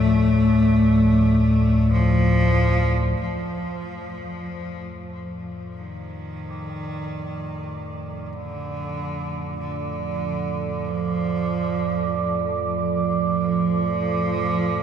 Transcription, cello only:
0, 0, Header, 1, 2, 480
1, 0, Start_track
1, 0, Tempo, 1276596
1, 1205, Time_signature, 4, 2, 24, 8
1, 5575, End_track
2, 0, Start_track
2, 0, Title_t, "Cello"
2, 0, Program_c, 0, 42
2, 0, Note_on_c, 0, 57, 113
2, 720, Note_off_c, 0, 57, 0
2, 722, Note_on_c, 0, 53, 123
2, 1188, Note_off_c, 0, 53, 0
2, 1207, Note_on_c, 0, 53, 95
2, 1911, Note_off_c, 0, 53, 0
2, 2162, Note_on_c, 0, 51, 76
2, 3104, Note_off_c, 0, 51, 0
2, 3104, Note_on_c, 0, 51, 58
2, 3134, Note_on_c, 0, 50, 86
2, 3139, Note_off_c, 0, 51, 0
2, 3607, Note_off_c, 0, 50, 0
2, 3609, Note_on_c, 0, 50, 78
2, 4092, Note_on_c, 0, 53, 91
2, 4098, Note_off_c, 0, 50, 0
2, 4809, Note_off_c, 0, 53, 0
2, 5043, Note_on_c, 0, 53, 105
2, 5575, Note_off_c, 0, 53, 0
2, 5575, End_track
0, 0, End_of_file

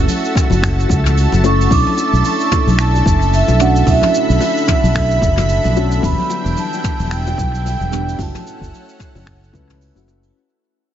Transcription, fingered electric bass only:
0, 0, Header, 1, 2, 480
1, 0, Start_track
1, 0, Key_signature, 2, "minor"
1, 0, Tempo, 540541
1, 1514, Time_signature, 4, 2, 24, 8
1, 9715, End_track
2, 0, Start_track
2, 0, Title_t, "Fingered electric bass"
2, 0, Program_c, 0, 33
2, 446, Note_on_c, 0, 30, 81
2, 751, Note_off_c, 0, 30, 0
2, 795, Note_on_c, 0, 37, 82
2, 1119, Note_off_c, 0, 37, 0
2, 1176, Note_on_c, 0, 30, 78
2, 1476, Note_off_c, 0, 30, 0
2, 1517, Note_on_c, 0, 35, 101
2, 1620, Note_off_c, 0, 35, 0
2, 1892, Note_on_c, 0, 35, 86
2, 1969, Note_off_c, 0, 35, 0
2, 2369, Note_on_c, 0, 35, 85
2, 2673, Note_off_c, 0, 35, 0
2, 2713, Note_on_c, 0, 30, 84
2, 3038, Note_off_c, 0, 30, 0
2, 3095, Note_on_c, 0, 35, 80
2, 3396, Note_off_c, 0, 35, 0
2, 3435, Note_on_c, 0, 35, 102
2, 3539, Note_off_c, 0, 35, 0
2, 3814, Note_on_c, 0, 35, 88
2, 3890, Note_off_c, 0, 35, 0
2, 4294, Note_on_c, 0, 35, 85
2, 4595, Note_off_c, 0, 35, 0
2, 4633, Note_on_c, 0, 30, 86
2, 4958, Note_off_c, 0, 30, 0
2, 5017, Note_on_c, 0, 35, 86
2, 5317, Note_off_c, 0, 35, 0
2, 5354, Note_on_c, 0, 28, 106
2, 5459, Note_off_c, 0, 28, 0
2, 5732, Note_on_c, 0, 28, 89
2, 5809, Note_off_c, 0, 28, 0
2, 6213, Note_on_c, 0, 28, 88
2, 6514, Note_off_c, 0, 28, 0
2, 6550, Note_on_c, 0, 35, 80
2, 6876, Note_off_c, 0, 35, 0
2, 6932, Note_on_c, 0, 28, 83
2, 7234, Note_off_c, 0, 28, 0
2, 7269, Note_on_c, 0, 30, 102
2, 7376, Note_off_c, 0, 30, 0
2, 7646, Note_on_c, 0, 30, 92
2, 7726, Note_off_c, 0, 30, 0
2, 8128, Note_on_c, 0, 30, 88
2, 8432, Note_off_c, 0, 30, 0
2, 8469, Note_on_c, 0, 37, 85
2, 8796, Note_off_c, 0, 37, 0
2, 8843, Note_on_c, 0, 30, 78
2, 9150, Note_off_c, 0, 30, 0
2, 9715, End_track
0, 0, End_of_file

